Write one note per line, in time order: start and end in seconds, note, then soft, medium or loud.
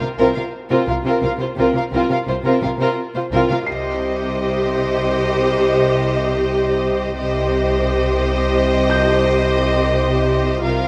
0.00 0.07 C3 soft
0.00 0.08 F4 soft
0.00 0.08 A#4 soft
0.00 1.53 G6 soft
0.18 0.25 C2 medium
0.18 0.26 C3 medium
0.18 0.35 C4 soft
0.18 0.34 F4 medium
0.18 0.35 A#4 medium
0.35 0.43 C3 soft
0.35 0.43 F4 soft
0.35 0.43 A#4 soft
0.35 0.42 F5 soft
0.70 0.77 C3 medium
0.70 0.86 C4 medium
0.70 0.87 F4 medium
0.70 0.86 A#4 soft
0.87 0.95 C2 soft
0.87 0.94 C3 soft
0.87 0.96 F4 soft
0.87 0.95 A#4 soft
0.87 0.95 F5 soft
1.04 1.11 C3 medium
1.04 1.21 C4 medium
1.04 1.22 F4 medium
1.04 1.22 A#4 medium
1.22 1.30 C2 soft
1.22 1.29 C3 soft
1.22 1.31 F4 soft
1.22 1.30 A#4 medium
1.22 1.31 F5 soft
1.39 1.46 C3 soft
1.39 1.47 F4 soft
1.39 1.48 F4 soft
1.39 1.48 C5 soft
1.57 1.65 C2 medium
1.57 1.64 C3 medium
1.57 1.74 C4 medium
1.57 1.74 F4 medium
1.57 1.74 A#4 medium
1.74 1.81 C3 soft
1.74 1.83 F4 soft
1.74 1.83 A#4 soft
1.74 1.83 F5 soft
1.92 2.00 C2 medium
1.92 1.99 C3 medium
1.92 2.09 C4 medium
1.92 2.09 F4 medium
1.92 2.09 A#4 medium
2.10 2.17 C3 soft
2.10 2.18 F4 soft
2.10 2.17 A#4 soft
2.10 2.18 F5 soft
2.27 2.35 C2 soft
2.27 2.34 C3 soft
2.27 2.35 F4 soft
2.27 2.36 F4 soft
2.27 2.35 C5 medium
2.45 2.52 C3 medium
2.45 2.61 C4 medium
2.45 2.61 F4 medium
2.45 2.61 A#4 medium
2.62 2.70 C2 soft
2.62 2.69 C3 soft
2.62 2.71 F4 soft
2.62 2.69 A#4 medium
2.62 2.69 F5 soft
2.79 2.86 C3 medium
2.79 2.96 C4 medium
2.79 2.96 F4 medium
2.79 2.96 A#4 medium
3.14 3.21 C3 soft
3.14 3.23 F4 soft
3.14 3.24 F4 soft
3.14 3.22 C5 medium
3.31 3.39 C2 medium
3.31 3.39 C3 medium
3.31 3.48 C4 medium
3.31 3.49 F4 medium
3.31 3.48 A#4 medium
3.49 3.56 C3 medium
3.49 3.58 F4 medium
3.49 3.58 A#4 medium
3.49 3.56 F5 soft
3.66 7.12 C2 medium
3.66 7.12 C3 medium
3.66 7.12 G4 medium
3.66 7.12 C5 medium
3.66 7.11 D#5 medium
3.66 5.72 C7 soft
7.16 10.61 C2 medium
7.16 10.61 C3 medium
7.16 10.61 G4 medium
7.16 10.61 C5 medium
7.16 10.61 D#5 medium
8.90 10.88 G6 medium
10.64 10.88 C2 medium
10.64 10.88 C3 medium
10.64 10.88 F4 medium
10.64 10.88 A#4 medium
10.64 10.88 F5 medium